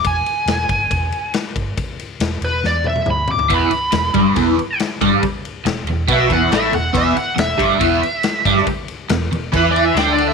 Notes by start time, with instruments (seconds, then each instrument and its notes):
0.04 fingered electric bass E1, lead electric guitar G#5, kick, ride
0.24 muted fingered electric bass stroke, ride
0.46 fingered electric bass E1, snare, ride
0.69 fingered electric bass G1, kick, ride
0.90 fingered electric bass E1, kick, ride
1.12 ride
1.34 snare, ride
1.55 fingered electric bass G1, kick, ride
1.77 kick, ride
1.99 ride
2.20 fingered electric bass E1, snare, ride
2.41 fingered electric bass E1, lead electric guitar B4, ride
2.64 fingered electric bass E2, lead electric guitar D5, snare
2.84 lead electric guitar E5, high tom
2.96 high tom
3.06 fingered electric bass D2, mid tom
3.10 lead electric guitar B5
3.28 lead electric guitar D6, floor tom
3.39 floor tom
3.49 fingered electric bass E1, overdriven electric guitar E2 E3, kick, ride
3.54 lead electric guitar B5
3.70 muted fingered electric bass stroke, muted overdriven electric guitar stroke, ride
3.92 fingered electric bass E1, overdriven electric guitar E2, snare, ride
4.14 fingered electric bass G1, overdriven electric guitar G2 G3, kick, ride
4.36 fingered electric bass E1, overdriven electric guitar E2 E3, kick, ride
4.59 ride
4.79 snare, ride
5.01 fingered electric bass G1, overdriven electric guitar G2 G3, kick, ride
5.23 muted overdriven electric guitar stroke, kick, ride
5.45 ride
5.65 fingered electric bass E1, overdriven electric guitar E2, snare, ride
5.86 fingered electric bass E1, overdriven electric guitar E2, ride
6.08 fingered electric bass B1, overdriven electric guitar B2 B3, kick, ride
6.13 lead electric guitar E5
6.29 fingered electric bass E1, overdriven electric guitar E2 E3, kick, ride
6.33 lead electric guitar F#5
6.51 fingered electric bass A1, overdriven electric guitar A2 A3, lead electric guitar E5, snare, ride
6.72 fingered electric bass E1, overdriven electric guitar E2, lead electric guitar F#5, ride
6.93 fingered electric bass E1, overdriven electric guitar E2 E3, kick, ride
6.98 lead electric guitar E5
7.15 lead electric guitar F#5, muted overdriven electric guitar stroke, muted fingered electric bass stroke, ride
7.36 fingered electric bass E1, overdriven electric guitar E2, lead electric guitar E5, snare, ride
7.58 fingered electric bass G1, overdriven electric guitar G2 G3, kick, ride
7.80 fingered electric bass E1, overdriven electric guitar E2 E3, kick, ride
8.03 ride
8.23 snare, ride
8.45 fingered electric bass G1, overdriven electric guitar G2 G3, kick, ride
8.57 snare
8.66 muted fingered electric bass stroke, muted overdriven electric guitar stroke, kick, ride
8.88 ride
9.09 fingered electric bass E1, overdriven electric guitar E2, snare, ride
9.32 fingered electric bass E1, overdriven electric guitar E2, ride
9.52 fingered electric bass E2, overdriven electric guitar E3 E4, kick, ride
9.56 lead electric guitar B4
9.71 lead electric guitar D5
9.76 ride
9.85 lead electric guitar E5
9.95 fingered electric bass D2, overdriven electric guitar D3 D4, lead electric guitar G5, snare, ride
10.13 lead electric guitar D5
10.18 ride
10.28 lead electric guitar E5, snare